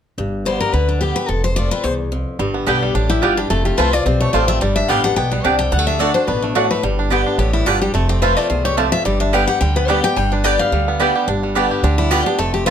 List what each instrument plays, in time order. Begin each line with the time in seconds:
0.18 upright bass G1, steel-string acoustic guitar G2
0.45 steel-string acoustic guitar D3 G3 B3 G4 C5
0.60 steel-string acoustic guitar A#4
0.73 upright bass D2, steel-string acoustic guitar D3 B4
0.89 steel-string acoustic guitar D4
1.01 steel-string acoustic guitar D3 G3 B3 G4
1.16 steel-string acoustic guitar B4
1.29 upright bass F1, steel-string acoustic guitar F2 A4
1.44 steel-string acoustic guitar C5
1.56 steel-string acoustic guitar F3 A3 C4 F4 D5
1.71 steel-string acoustic guitar C4 F4 B4
1.84 upright bass C2, steel-string acoustic guitar E2 C5
2.12 steel-string acoustic guitar F2
2.39 upright bass G1, steel-string acoustic guitar G2, five-string banjo G3
2.54 five-string banjo B3
2.66 upright bass B1, steel-string acoustic guitar D3 G3 B3 G4, mandolin B3 G4 D5 G5, five-string banjo D4
2.83 five-string banjo G3
2.95 upright bass A1, steel-string acoustic guitar A2 G4, five-string banjo D4
3.10 steel-string acoustic guitar E4, five-string banjo G4
3.22 upright bass G1, steel-string acoustic guitar G2 F4, five-string banjo G3, mandolin B3 G4 D5 G5
3.37 five-string banjo D4, steel-string acoustic guitar G4
3.50 upright bass F1, steel-string acoustic guitar F2 A4, five-string banjo A3
3.65 five-string banjo F4, steel-string acoustic guitar G4
3.77 upright bass C2, steel-string acoustic guitar F3 A3 C4 F4 B4, five-string banjo F3, mandolin A3 F4 C5 A5
3.93 steel-string acoustic guitar C4 F4 D5, five-string banjo F4
4.06 upright bass B1, steel-string acoustic guitar C3 C5, five-string banjo C4
4.21 five-string banjo A3, steel-string acoustic guitar C#5
4.33 upright bass A1, steel-string acoustic guitar F3 A3 C4 F4 D5, mandolin A3 F4 C5 A5, five-string banjo F4
4.48 five-string banjo A3, steel-string acoustic guitar E5
4.61 upright bass G1, steel-string acoustic guitar G2 D5, five-string banjo G3
4.76 five-string banjo D4, steel-string acoustic guitar E5
4.88 upright bass A1, steel-string acoustic guitar D3 G3 B3 G4 F5, five-string banjo D3, mandolin B3 G4 D5 G5
5.04 steel-string acoustic guitar B3 G4 F#5, five-string banjo D4
5.16 upright bass B1, steel-string acoustic guitar B2 G5, five-string banjo B3
5.32 five-string banjo G3, steel-string acoustic guitar B4
5.44 upright bass C2, steel-string acoustic guitar C3 D5, mandolin B3 G4 D5 G5, five-string banjo D4
5.59 five-string banjo G3, steel-string acoustic guitar G5
5.72 upright bass D2, steel-string acoustic guitar D3 F#5, five-string banjo G3
5.79 five-string banjo A3
5.87 five-string banjo D4, steel-string acoustic guitar E5
5.99 steel-string acoustic guitar D3 A3 D4 F#4 D5, five-string banjo D3, mandolin A3 F#4 D5 F#5
6.14 five-string banjo D4, steel-string acoustic guitar D4 F#4 C5
6.27 upright bass A1, steel-string acoustic guitar B2 B4, five-string banjo D4
6.42 five-string banjo A3, steel-string acoustic guitar D4
6.55 steel-string acoustic guitar A2 F#4, mandolin A3 F#4 D5 F#5, five-string banjo D4
6.71 five-string banjo A3, steel-string acoustic guitar B4
6.83 upright bass G1, steel-string acoustic guitar G2, five-string banjo G3
6.99 five-string banjo D4
7.10 steel-string acoustic guitar D3 G3 B3 G4, five-string banjo D3, mandolin B3 G4 D5 G5
7.26 five-string banjo D4
7.38 upright bass A1, steel-string acoustic guitar A2 G4, five-string banjo B3
7.53 five-string banjo G3, steel-string acoustic guitar E4
7.66 upright bass G1, steel-string acoustic guitar G2 F4, mandolin B3 G4 D5 G5, five-string banjo D4
7.82 five-string banjo G3, steel-string acoustic guitar G4
7.94 upright bass F1, steel-string acoustic guitar F2 A4, five-string banjo A3
8.09 five-string banjo C4, steel-string acoustic guitar G4
8.22 steel-string acoustic guitar F3 A3 C4 F4 B4, mandolin A3 F4 C5 A5, five-string banjo F4
8.37 five-string banjo A3, steel-string acoustic guitar C4 F4 D5
8.50 upright bass C2, steel-string acoustic guitar E2 C5, five-string banjo F4
8.65 five-string banjo G4, steel-string acoustic guitar C#5
8.77 steel-string acoustic guitar F2 D5, mandolin A3 F4 C5 A5, five-string banjo A3
8.92 five-string banjo F4, steel-string acoustic guitar E5
9.05 upright bass G1, steel-string acoustic guitar G2 D5, five-string banjo G3
9.20 five-string banjo D4, steel-string acoustic guitar E5
9.33 steel-string acoustic guitar D3 G3 B3 G4 F5, five-string banjo G3, mandolin B3 G4 D5 G5
9.47 steel-string acoustic guitar B3 G4 F#5, five-string banjo G4
9.61 upright bass D2, steel-string acoustic guitar D3 G5, five-string banjo G3
9.76 five-string banjo B3, steel-string acoustic guitar B4
9.88 steel-string acoustic guitar D3 G3 B3 G4 D5, five-string banjo G3, mandolin B3 G4 D5 G5
10.03 steel-string acoustic guitar B3 G4 G5, five-string banjo G4
10.16 upright bass G1, steel-string acoustic guitar G2 G5, five-string banjo G3
10.32 five-string banjo D4, steel-string acoustic guitar B4
10.44 steel-string acoustic guitar D3 G3 B3 G4 D5, five-string banjo G3, mandolin B3 G4 D5 G5
10.59 five-string banjo G4, steel-string acoustic guitar F5
10.72 upright bass D2, steel-string acoustic guitar D3, five-string banjo G3
10.88 five-string banjo B3
10.99 steel-string acoustic guitar D3 G3 B3 G4, five-string banjo G3, mandolin B3 G4 D5 G5
11.16 five-string banjo G4
11.28 upright bass G1, steel-string acoustic guitar G2, five-string banjo D4
11.43 five-string banjo G3
11.55 steel-string acoustic guitar D3 G3 B3 G4, mandolin B3 G4 D5 G5, five-string banjo D4
11.71 five-string banjo G4
11.83 upright bass D2, steel-string acoustic guitar D3 G4, five-string banjo D4
11.98 five-string banjo G3, steel-string acoustic guitar E4
12.11 steel-string acoustic guitar D3 G3 B3 F4 G4, mandolin B3 G4 D5 G5, five-string banjo B3
12.26 steel-string acoustic guitar B3 G4, five-string banjo D4
12.38 upright bass F1, steel-string acoustic guitar F2 A4, five-string banjo A3
12.54 five-string banjo C4, steel-string acoustic guitar G4
12.66 steel-string acoustic guitar F3 A3 B4, mandolin A3 F4, five-string banjo F4